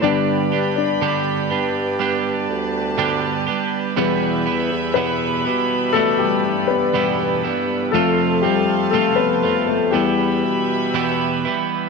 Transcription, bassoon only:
X:1
M:4/4
L:1/16
Q:1/4=60
K:Ephr
V:1 name="Bassoon" clef=bass
G,,4- G,, z G,,4 D,,4 z2 | E,,3 E,,3 B,,4 G,,6 | F,,4- F,, z F,,2 E,,2 B,,4 z2 |]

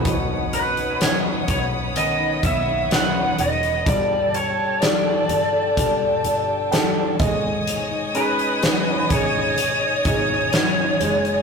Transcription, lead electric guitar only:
X:1
M:4/4
L:1/8
Q:1/4=63
K:Bmix
V:1 name="Lead electric guitar"
z B c c d e f d | =d c d4- d z | z B2 c2 c3 |]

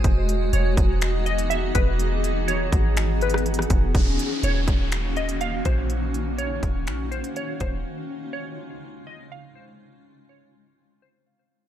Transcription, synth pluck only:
X:1
M:4/4
L:1/8
Q:1/4=123
K:Ebdor
V:1 name="Synth pluck"
z2 d3 ^d =e =B | z2 d3 =B z2 | z2 d3 e f c | z2 d3 c d c |
z2 d3 e f c | z2 d3 c z2 |]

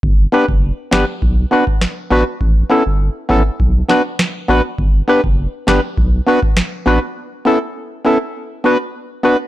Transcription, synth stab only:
X:1
M:4/4
L:1/8
Q:1/4=101
K:Bm
V:1 name="Synth stab"
z [B,DGB] z [B,DGB] z [B,DFB] z [B,DFB] | z [B,CEA] z [B,CEA] z [B,DFB] z [B,DFB] | z [B,DGB] z [B,DGB] z [B,DFB] z [B,DFB] | z [B,CEA] z [B,CEA] z [B,DFB] z [B,DFB] |]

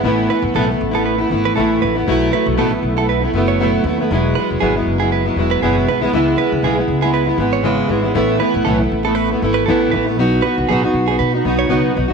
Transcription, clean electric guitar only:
X:1
M:4/4
L:1/16
Q:"Swing 16ths" 1/4=118
K:Alyd
V:1 name="Clean electric guitar"
z2 B z A z2 A B z2 B A z B z | z2 B z A z2 A B z2 c2 z3 | z2 B z G z2 G B z2 B G z B z | z2 B z G z2 G B z2 c2 z3 |
z2 B z A z2 A B z2 B A z B z | z2 B z G z2 G B z2 c2 z3 |]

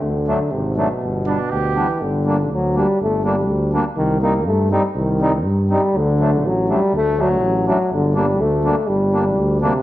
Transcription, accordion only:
X:1
M:2/4
L:1/8
Q:1/4=122
K:G
V:1 name="Accordion"
z [F,A,D] z [F,A,D] | z [G,B,D] z [G,B,D] | [K:Gm] z [G,B,D] z [G,B,D] | z [G,B,D] z [G,B,D] |
z [G,CE] z [G,CE] | z [G,CE] z [G,CE] | z [^F,A,D] z [F,A,D] | z [^F,A,D] z [F,A,D] |
z [G,B,D] z [G,B,D] | z [G,B,D] z [G,B,D] |]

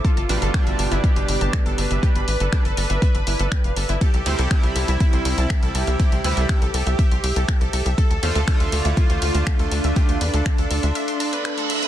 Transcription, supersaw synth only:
X:1
M:4/4
L:1/8
Q:1/4=121
K:C
V:1 name="Supersaw synth"
F4 G3 B- | B8 | G4 E3 G- | G8 |
A4 F3 D- | D8 |]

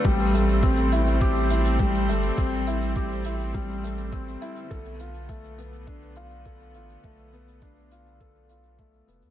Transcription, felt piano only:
X:1
M:4/4
L:1/8
Q:1/4=103
K:Am
V:1 name="Felt piano"
G, A, C E G E G, A, | C E G E G, A, C E | A F A, B, D F A F | A, B, D F A F A, B, |]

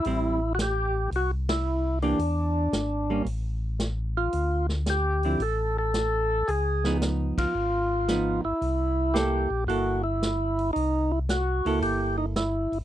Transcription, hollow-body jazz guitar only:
X:1
M:4/4
L:1/8
Q:"Swing" 1/4=112
K:Cmix
V:1 name="Hollow-body jazz guitar"
[G,CE] z6 [E,B,DG] | z3 [G,B,_D] z4 | z3 [D,F,CE] z4 | z [F,_C_E]3 z2 [F,CE] z |
z2 [B,EA] z [B,EA] z3 | z3 [B,EA]3 z2 |]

